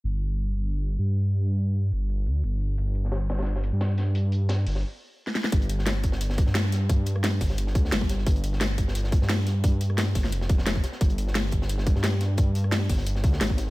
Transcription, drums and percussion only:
0.04 closed hi-hat
0.21 closed hi-hat
0.38 closed hi-hat
0.55 closed hi-hat
0.72 closed hi-hat
0.89 closed hi-hat
1.06 closed hi-hat
1.24 closed hi-hat
1.41 closed hi-hat
1.58 closed hi-hat
1.75 closed hi-hat
1.92 closed hi-hat
2.09 closed hi-hat
2.26 closed hi-hat
2.44 closed hi-hat
2.61 closed hi-hat
2.78 closed hi-hat
2.87 closed hi-hat
2.95 closed hi-hat
3.05 snare
3.12 snare, closed hi-hat
3.29 snare, closed hi-hat
3.38 snare, closed hi-hat
3.42 snare, closed hi-hat
3.46 closed hi-hat
3.56 snare
3.63 closed hi-hat
3.81 snare, closed hi-hat
3.97 snare, closed hi-hat
4.15 closed hi-hat
4.32 closed hi-hat
4.49 snare, closed hi-hat
4.67 snare, closed hi-hat, open hi-hat
4.75 snare
5.27 snare
5.35 snare
5.44 snare
5.52 kick, closed hi-hat
5.62 closed hi-hat
5.69 closed hi-hat
5.79 snare
5.87 snare, closed hi-hat
6.03 kick, closed hi-hat
6.12 snare
6.21 closed hi-hat
6.30 snare
6.38 kick, closed hi-hat
6.47 snare
6.54 snare, closed hi-hat
6.64 cross-stick
6.72 snare, closed hi-hat
6.89 kick, closed hi-hat
7.06 closed hi-hat
7.16 cross-stick
7.24 snare, closed hi-hat
7.41 kick, snare, open hi-hat
7.50 snare
7.58 closed hi-hat
7.67 snare
7.75 kick, closed hi-hat
7.85 snare
7.92 snare, closed hi-hat
8.01 kick, snare
8.09 snare, closed hi-hat
8.18 snare
8.26 kick, closed hi-hat
8.36 closed hi-hat
8.44 closed hi-hat
8.53 snare
8.61 snare, closed hi-hat
8.78 kick, closed hi-hat
8.88 snare
8.95 closed hi-hat
9.04 snare
9.12 kick, closed hi-hat
9.22 snare
9.29 snare, closed hi-hat
9.39 cross-stick
9.47 snare, closed hi-hat
9.64 kick, closed hi-hat
9.81 closed hi-hat
9.90 cross-stick
9.98 snare, closed hi-hat
10.15 kick, snare, open hi-hat
10.24 snare
10.32 closed hi-hat
10.41 snare
10.49 kick, closed hi-hat
10.58 snare
10.67 snare, closed hi-hat
10.76 kick, snare
10.83 snare, closed hi-hat
10.92 snare
11.01 kick, closed hi-hat
11.10 closed hi-hat
11.18 closed hi-hat
11.27 snare
11.35 snare, closed hi-hat
11.51 kick, closed hi-hat
11.62 snare
11.69 closed hi-hat
11.78 snare
11.87 kick, closed hi-hat
11.96 snare
12.03 snare, closed hi-hat
12.13 cross-stick
12.20 snare, closed hi-hat
12.37 kick, closed hi-hat
12.55 closed hi-hat
12.64 cross-stick
12.71 snare, closed hi-hat
12.89 kick, snare, open hi-hat
12.98 snare
13.07 closed hi-hat
13.16 snare
13.23 kick, closed hi-hat
13.33 snare
13.41 snare, closed hi-hat
13.50 kick, snare
13.57 snare, closed hi-hat

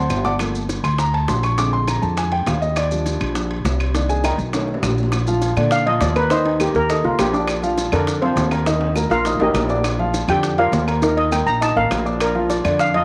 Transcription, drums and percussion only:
0.10 low bongo, high timbale, low timbale, claves, maracas
0.25 low bongo, maracas
0.39 high bongo, high timbale, claves, maracas
0.55 maracas
0.69 high bongo, high timbale, low timbale, maracas
0.84 high timbale, claves, maracas
0.98 high bongo, maracas
1.14 high timbale
1.28 high bongo, low bongo, low timbale, maracas
1.43 high timbale, claves, maracas
1.58 high bongo, high timbale, maracas
1.73 high bongo
1.88 high bongo, high timbale, low timbale, claves, maracas
2.03 high bongo, maracas
2.17 high bongo, high timbale, maracas
2.32 high bongo, high timbale
2.46 high bongo, low bongo, high timbale, low timbale, claves, maracas
2.62 maracas
2.76 high bongo, high timbale, claves, maracas
2.91 maracas
3.06 high bongo, high timbale, low timbale, maracas
3.21 high timbale, claves, maracas
3.35 high bongo, maracas
3.51 high timbale
3.65 high bongo, low bongo, low timbale, maracas
3.80 high timbale, claves, maracas
3.95 high bongo, high timbale, maracas
4.09 high bongo, maracas
4.24 high bongo, high timbale, low timbale, claves, maracas
4.39 high bongo, maracas
4.53 high bongo, high timbale, maracas
4.68 high bongo
4.74 low timbale
4.83 high bongo, low bongo, low timbale, claves, maracas
4.98 maracas
5.03 low timbale
5.12 high bongo, high timbale, claves, maracas
5.27 high bongo, maracas
5.42 high bongo, high timbale, low timbale, maracas
5.56 high bongo, high timbale, claves, maracas
5.71 high bongo, maracas
5.87 high timbale
6.01 high bongo, low bongo, high timbale, low timbale, maracas
6.16 high bongo, high timbale, claves, maracas
6.30 high bongo, maracas
6.45 high bongo, high timbale
6.60 high bongo, high timbale, low timbale, claves, maracas
6.75 high bongo, maracas
6.90 high bongo, high timbale, maracas
7.04 high bongo
7.19 high bongo, low bongo, high timbale, low timbale, claves, maracas
7.34 maracas
7.48 high bongo, high timbale, claves, maracas
7.62 high bongo, maracas
7.78 high bongo, high timbale, low timbale, maracas
7.92 high bongo, high timbale, claves, maracas
8.07 high bongo, maracas
8.22 high timbale
8.37 high bongo, low bongo, high timbale, low timbale, maracas
8.51 high bongo, high timbale, claves, maracas
8.66 high bongo, high timbale, maracas
8.81 high bongo, high timbale
8.96 high bongo, low timbale, claves, maracas
9.10 high bongo, maracas
9.25 high bongo, low timbale, maracas
9.40 high bongo, low timbale
9.54 high bongo, low bongo, low timbale, claves, maracas
9.69 low timbale, maracas
9.84 high bongo, high timbale, claves, maracas
9.99 high bongo
10.14 high bongo, high timbale, low timbale, maracas
10.29 high bongo, high timbale, claves, maracas
10.43 high bongo, maracas
10.58 high timbale
10.73 high bongo, low bongo, high timbale, low timbale, maracas
10.88 high bongo, high timbale, claves, maracas
11.02 high bongo, maracas
11.18 high bongo, high timbale
11.32 high bongo, high timbale, low timbale, claves, maracas
11.47 high bongo, maracas
11.62 high bongo, high timbale, maracas
11.77 high bongo
11.91 high bongo, low bongo, high timbale, low timbale, claves, maracas
12.06 maracas
12.21 high bongo, high timbale, claves, maracas
12.35 high bongo
12.50 high bongo, high timbale, low timbale, maracas
12.64 high bongo, high timbale, claves, maracas
12.79 high bongo, maracas
12.94 high timbale

